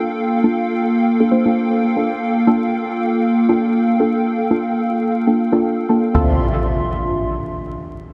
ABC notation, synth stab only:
X:1
M:4/4
L:1/16
Q:"Swing 16ths" 1/4=118
K:Gdor
V:1 name="Synth stab"
[B,DFA]3 [B,DFA]6 [B,DFA] [B,DFc] [B,DFA]4 [B,DFA] | z3 [B,DFA] z6 z [B,DFA]2 z2 [B,DFA]- | [B,DFA]3 [B,DFA]6 [B,DFA] z [B,DFA]3 [B,DFA] z | [CEFA]2 z12 z2 |]